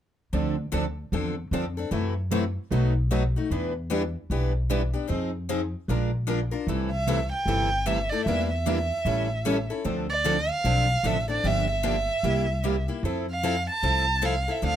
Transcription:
0.33 D2 D3 F3 C4 D4 A4
0.72 D2 D3 F3 C4 D4 A4
1.12 E2 D3 F3 C4 D4 A4
1.51 F2 D3 F3 C4 D4 A4
1.77 C4 D4 A4
1.91 F#2 C3 E3 F#3 A3 C4 E4 F#4 A4
2.31 C3 E3 F#3 A3 C4 E4 F#4 A4
2.71 B1 B2 F#3 A3 D#4 F#4 B4
3.11 B2 F#3 A3 D#4 F#4 B4
3.36 A3 D#4 F#4
3.50 E2 E3 G3 B3 D4 E4 G4 B4
3.90 E3 G3 B3 D4 E4 G4 B4
4.30 B1 E3 G3 B3 D4 E4 G4 B4
4.70 E3 G3 B3 D4 E4 G4 B4
4.93 B3 D4 G4
5.08 F2 F3 C4 D#4 G#4
5.49 F3 C4 D#4 G#4
5.88 A#1 F3 G#3 D4 F4 A#4
6.27 F3 G#3 D4 F4 A#4
6.51 D4 F4 A#4
6.67 C2 C3 E3 G3 A3 C4 E4 A4
6.92 E5
7.07 C3 E3 G3 A3 C4 E4 A4
7.32 G5
7.46 G1 C3 E3 G3 A3 C4 E4 A4
7.86 C3 E3 G3 A3 C4 E4 A4 E5
8.09 A3 E4 A4 D5
8.25 E2 E3 G3 A#3 D4 E4 G4 A#4 E5
8.50 E5
8.66 E3 G3 A#3 D4 E4 G4 A#4
9.05 A1 E3 G3 C#4 E4 A4
9.45 E3 G3 C#4 E4 A4
9.70 C#4 E4 A4
9.84 D2 D3 F3 C4 D4 A4
10.10 D5
10.24 D3 F3 C4 D4 A4
10.50 F5
10.64 B1 D3 F3 C4 D4 A4
11.03 A1 D3 F3 C4 D4 A4 E5
11.28 C4 D4 A4 D5
11.44 G1 D3 F3 A#3 D4 G4 E5
11.71 E5
11.83 D3 F3 A#3 D4 G4
12.23 C2 C3 G3 A#3 E4 G4
12.64 C3 G3 A#3 E4 G4
12.88 A#3 E4 G4
13.03 F2 F3 C4 E4 A4
13.30 F5
13.43 F3 C4 E4 A4
13.70 A5
13.83 C2 F3 C4 E4 A4
14.22 F3 C4 E4 A4 F5
14.48 C4 E4 A4 E5
14.62 D2 D3 F3 C4 D4 A4
14.66 F5

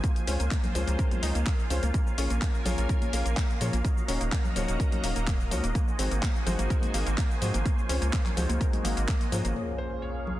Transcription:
Already playing: G#5
0.03 A#3 F4 C5 F5, kick, closed hi-hat, cabasa
0.16 closed hi-hat, cabasa
0.27 C#2 G#3 C4 C#4 F4 C5, open hi-hat, cabasa
0.40 C#2 A#3, closed hi-hat, cabasa
0.51 A#3, kick, clap, closed hi-hat, cabasa
0.64 closed hi-hat, low conga, cabasa
0.75 C#2 F3 G#3 C4 C#4 F4 C5, open hi-hat, low conga, cabasa
0.87 C#2 A#3, closed hi-hat, high conga, cabasa
0.99 A#4, kick, closed hi-hat, cabasa
1.11 closed hi-hat, high conga, low conga, cabasa
1.23 C#2 G#3 C4 C#4 D#4 F4 D#5, open hi-hat, cabasa
1.35 C#2 A#3, closed hi-hat, cabasa
1.46 A#4, kick, clap, closed hi-hat, cabasa
1.59 cabasa
1.70 C#2 G#3 C4 C#4 F4 C5, open hi-hat, cabasa
1.82 C#2 A#3, closed hi-hat, high conga, cabasa
1.94 A#3 A#4 G#5, kick, closed hi-hat, cabasa
2.07 cabasa
2.18 A#1 A#3 C#4 F4 G#4 C#5, open hi-hat, cabasa
2.30 A#1 A#3, closed hi-hat, cabasa
2.42 A#3, kick, clap, closed hi-hat, cabasa
2.55 cabasa
2.65 A#1 F3 A#3 C#4 F4 G#4 C#5, open hi-hat, low conga, cabasa
2.77 A#1 A#3, closed hi-hat, high conga, cabasa
2.89 A#4, kick, closed hi-hat, cabasa
3.02 closed hi-hat, high conga, cabasa
3.13 A#1 A#3 C#4 F4 G#4 F5, open hi-hat, cabasa
3.25 A#1 A#3, closed hi-hat, cabasa
3.37 A#3, kick, clap, closed hi-hat, cabasa
3.50 cabasa
3.61 A#2 F3 A#3 C#4 F4 G#4 C#5, open hi-hat, cabasa
3.73 A#1 A#3, closed hi-hat, high conga, cabasa
3.85 A#3 F#4 D#5 A#5, kick, closed hi-hat, cabasa
3.98 cabasa
4.08 D#1 A#3 C#4 D#4 F#4 C#5, open hi-hat, cabasa
4.21 D#1 A#3, closed hi-hat, cabasa
4.32 A#3, kick, clap, closed hi-hat, cabasa
4.45 low conga, cabasa
4.56 D#1 F3 A#3 C#4 D#4 F#4 C#5, open hi-hat, low conga, cabasa
4.68 D#1 A#3, closed hi-hat, high conga, cabasa
4.80 A#4, kick, closed hi-hat, cabasa
4.91 closed hi-hat, high conga, low conga, cabasa
5.03 D#1 A#3 C#4 D#4 F#4 F5, open hi-hat, cabasa
5.16 D#1 A#3, closed hi-hat, cabasa
5.27 A#3, kick, clap, closed hi-hat, cabasa
5.40 cabasa
5.51 C#2 F3 A#3 C#4 D#4 F#4 C#5, open hi-hat, cabasa
5.63 D#1 A#3, closed hi-hat, high conga, cabasa
5.75 A#3 F#4 C5 G#5, kick, closed hi-hat, cabasa
5.88 cabasa
5.99 G#1 G#3 C4 D#4 F#4 C5, open hi-hat, cabasa
6.11 G#1 A#3, closed hi-hat, cabasa
6.23 A#3, kick, clap, closed hi-hat, cabasa
6.36 cabasa
6.46 G#1 F3 G#3 C4 D#4 F#4 C5, open hi-hat, low conga, cabasa
6.59 G#1 A#3, closed hi-hat, high conga, cabasa
6.70 A#4, kick, closed hi-hat, cabasa
6.82 closed hi-hat, high conga, cabasa
6.94 G#1 G#3 A#3 C4 D#4 F#4 F5, open hi-hat, cabasa
7.06 G#1 A#3, closed hi-hat, cabasa
7.18 A#3, kick, clap, closed hi-hat, cabasa
7.31 cabasa
7.42 G#2 F3 G#3 C4 D#4 F#4 C5, open hi-hat, cabasa
7.54 G#1 A#3, closed hi-hat, high conga, cabasa
7.65 A#3 F4 C#5, kick, closed hi-hat, cabasa
7.79 cabasa
7.89 C#2 G#3 C4 C#4 F4 C5, open hi-hat, cabasa
8.02 C#2 A#3, closed hi-hat, cabasa
8.13 A#3, kick, clap, closed hi-hat, cabasa
8.26 clap, closed hi-hat, low conga, cabasa
8.37 C#2 F3 G#3 C4 D#4 F#4 C5, open hi-hat, low conga, cabasa
8.49 C#2 A#3, closed hi-hat, high conga, cabasa
8.61 F#4 A#4 D#5, kick, closed hi-hat, cabasa
8.73 closed hi-hat, high conga, low conga, cabasa
8.84 G#1 G#3 A#3 C4 D#4 F#4 F5, open hi-hat, cabasa
8.97 G#1 A#3, closed hi-hat, cabasa
9.08 A#3, kick, clap, closed hi-hat, cabasa
9.21 closed hi-hat, cabasa
9.32 G#2 F3 A#3 C#4 F4 G#4 C5, open hi-hat, cabasa
9.44 G#1 A#3, closed hi-hat, high conga, cabasa
9.56 A#3 C#4 F4 G#4 C#5 F5, impact
9.78 C5
10.02 C#5
10.27 low conga

